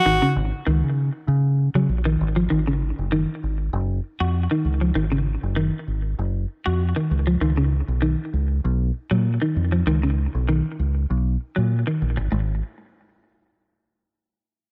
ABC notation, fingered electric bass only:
X:1
M:4/4
L:1/16
Q:"Swing 16ths" 1/4=98
K:C#mix
V:1 name="Fingered electric bass" clef=bass
G,,, z G,,, z C,, C,2 z C,3 C, A,,,2 G,,,2 | G,,,3 F,,,2 z G,,,2 F,,,2 z E,,2 z C,,2 | G,,,3 F,,,2 z G,,,2 F,,,2 z E,,2 z C,,2 | C,,3 B,,,2 z C,,2 B,,,2 z A,,2 z E,,2 |
C,,3 B,,,2 z C,,2 B,,,2 z A,,2 z A,,, G,,, | G,,,2 z12 z2 |]